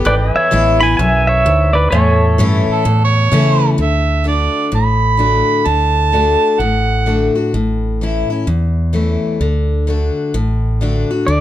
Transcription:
0.05 G#1 E2 B4 D5 G5
0.28 G#5
0.33 C#5 E5
0.51 A1 E3 G#3 B3 E4
0.81 B3 E4 G#5 B5
0.97 B1 F#2 E5 G#5
1.27 C#5 E5
1.46 D2 G#2
1.73 B4 D5
1.91 E2 A2 A4 C#5 E5
1.95 G#5
2.15 A5
2.38 G2 E3 A3 C#4 E4
2.69 A4, muted fingered electric bass stroke
2.85 E2 A2
3.04 C#5
3.32 C#3 E3 A3 C#4 E4
3.78 D2 D3 E5
4.24 D3 A3 D4 F#4
4.28 D5
4.72 A1 A2 B5
5.17 D3 A3 D4 F#4
5.65 D2 D3 A5
6.12 D3 A3 D4 F#4
6.59 A1 A2 F#5
7.06 D3 A3 D4 F#4
7.35 D4 F#4
7.53 A1 A2
8.01 E3 A3 C#4 E4
8.30 C#4 E4
8.47 E2
8.93 E3 A3 C#4 E4
9.40 D2 D3
9.87 D3 A3 D4 F#4
10.34 A1 A2
10.81 D3 A3 D4 F#4
11.11 D4 F#4
11.27 D2 D3 D5

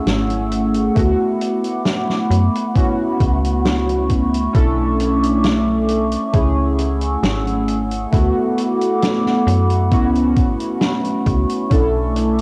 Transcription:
Already playing: A3 C#4 E4 G#4 F#5 C#6 E6
0.07 G#1, snare, closed hi-hat
0.30 closed hi-hat
0.52 closed hi-hat
0.74 closed hi-hat
0.95 D2 A3 B3 E4 F#4 B5 D6, kick, closed hi-hat
1.41 closed hi-hat
1.64 closed hi-hat
1.85 snare, closed hi-hat
2.10 snare
2.30 F#2, closed hi-hat
2.55 closed hi-hat
2.74 B3 C#4 E4 F#4 C#6, kick, closed hi-hat
3.20 C#2, kick, closed hi-hat
3.44 closed hi-hat
3.65 snare, closed hi-hat
3.89 closed hi-hat
4.09 kick, closed hi-hat
4.34 closed hi-hat
4.53 B1 C#4 D4 E4 A4 E5 D6, kick, closed hi-hat
5.00 closed hi-hat
5.23 closed hi-hat
5.44 snare, closed hi-hat
5.88 closed hi-hat
6.12 closed hi-hat
6.32 C#2 A3 C#4 E4 G#4 F#5 E6, kick, closed hi-hat
6.79 closed hi-hat
7.01 closed hi-hat
7.23 G#1, snare, closed hi-hat
7.47 closed hi-hat
7.68 closed hi-hat
7.91 closed hi-hat
8.11 D2 A3 B3 E4 F#4 A4 B5 D6, kick, closed hi-hat
8.58 closed hi-hat
8.81 closed hi-hat
9.02 snare, closed hi-hat
9.26 snare
9.47 F#2, closed hi-hat
9.70 closed hi-hat
9.91 C#2 A3 B3 C#4 E4 F#4 C#6, kick, closed hi-hat
10.15 closed hi-hat
10.36 G#1, kick, closed hi-hat
10.60 closed hi-hat
10.81 snare, closed hi-hat
11.04 closed hi-hat
11.26 C#2, kick, closed hi-hat
11.49 closed hi-hat
11.69 B1 C#4 D4 E4 A4 E5 D6, kick, closed hi-hat
12.16 closed hi-hat
12.38 closed hi-hat

